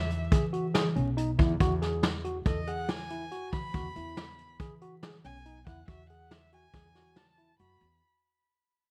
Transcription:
0.00 0.28 E2 medium
0.00 0.33 E5 medium
0.11 closed hi-hat medium
0.32 0.92 E3 medium
0.32 0.45 G#4 medium
0.32 kick loud
0.32 closed hi-hat medium
0.53 0.66 F#4 medium
0.53 closed hi-hat medium
0.74 0.87 G#4 medium
0.74 snare loud
0.74 closed hi-hat medium
0.96 1.36 B1 medium
0.96 1.09 C#4 medium
0.96 closed hi-hat medium
1.17 1.30 D#4 medium
1.17 closed hi-hat medium
1.39 1.59 E2 medium
1.39 1.51 E4 medium
1.39 kick medium
1.39 closed hi-hat medium
1.60 2.42 E2 medium
1.60 1.73 F#4 medium
1.60 kick medium
1.60 closed hi-hat medium
1.82 2.07 G#4 medium
1.82 snare soft
1.82 closed hi-hat medium
2.03 snare loud
2.03 closed hi-hat medium
2.24 2.37 F#4 medium
2.24 closed hi-hat medium
2.46 3.28 E2 medium
2.46 2.59 A4 medium
2.46 2.69 D#5 medium
2.46 kick loud
2.46 closed hi-hat medium
2.67 2.93 G#4 medium
2.67 2.90 F#5 medium
2.67 closed hi-hat medium
2.89 3.52 G#5 medium
2.89 snare loud
2.89 closed hi-hat medium
3.10 3.23 E4 medium
3.10 closed hi-hat medium
3.31 3.57 F#4 medium
3.31 closed hi-hat medium
3.52 3.76 E3 medium
3.52 4.56 B5 loud
3.52 kick medium
3.52 closed hi-hat medium
3.74 3.94 E2 medium
3.74 3.87 F#4 medium
3.74 kick loud
3.74 closed hi-hat medium
3.96 4.56 E2 medium
3.96 4.21 E4 medium
3.96 closed hi-hat medium
4.17 snare loud
4.17 closed hi-hat medium
4.38 closed hi-hat medium
4.60 5.20 E3 medium
4.60 4.73 G#4 medium
4.60 kick medium
4.60 closed hi-hat medium
4.81 4.94 F#4 medium
4.81 closed hi-hat medium
5.03 5.15 G#4 medium
5.03 snare loud
5.03 closed hi-hat medium
5.24 5.64 B1 medium
5.24 5.37 C#4 medium
5.24 5.64 G#5 loud
5.24 closed hi-hat medium
5.45 5.58 D#4 medium
5.45 closed hi-hat medium
5.67 5.87 E2 loud
5.67 5.80 E4 medium
5.67 5.87 F#5 medium
5.67 kick medium
5.67 closed hi-hat medium
5.88 6.70 E2 medium
5.88 6.01 F#4 medium
5.88 6.09 E5 medium
5.88 kick loud
5.88 closed hi-hat medium
6.09 6.35 G#4 medium
6.09 6.33 F#5 medium
6.09 closed hi-hat medium
6.31 6.53 E5 medium
6.31 snare loud
6.31 closed hi-hat medium
6.52 6.65 F#4 medium
6.52 7.19 G#5 loud
6.52 closed hi-hat medium
6.73 7.55 E2 medium
6.73 6.87 G#4 medium
6.73 kick loud
6.73 snare soft
6.73 closed hi-hat medium
6.95 7.20 F#4 medium
6.95 snare soft
6.95 closed hi-hat medium
7.16 7.59 A5 loud
7.16 snare medium
7.16 closed hi-hat medium
7.38 7.50 E4 medium
7.38 closed hi-hat medium
7.59 7.79 F#2 medium
7.59 7.85 F#4 medium
7.59 7.99 B5 medium
7.59 closed hi-hat medium
7.80 8.00 E2 medium
7.80 closed hi-hat medium

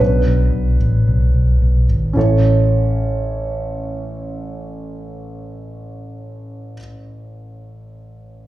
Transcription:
0.00 0.22 B1 medium
0.00 0.76 F#3 soft
0.00 1.85 B3 medium
0.00 0.77 D4 soft
0.00 1.84 B4 medium
0.27 0.49 B1 medium
0.53 0.75 B1 medium
0.80 1.02 A1 medium
1.08 1.30 B1 medium
1.34 1.57 B1 medium
1.62 1.84 B1 medium
1.89 2.11 G#1 medium
2.13 6.76 A1 medium
2.13 6.77 A1 medium
2.13 6.74 C#4 medium
2.13 6.76 E4 medium
2.13 6.78 A4 medium
2.19 6.79 C#5 medium

